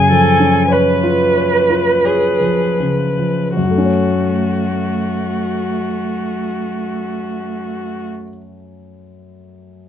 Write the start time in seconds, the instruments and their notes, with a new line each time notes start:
Already playing: grand piano F#2 C#3, violin G#5
0.10 grand piano F3, cello A4
0.40 grand piano C#4
0.70 cello B4, violin B4, grand piano C#5
1.03 grand piano F4
1.36 grand piano C#5
1.70 grand piano F4
2.05 cello G#4, grand piano C#5
2.41 grand piano F3
2.80 grand piano C#3
3.19 grand piano F3
3.56 grand piano F#2, cello A3, violin F#4
3.64 grand piano F#3
3.71 grand piano A3
3.78 grand piano C#4
3.85 grand piano C#5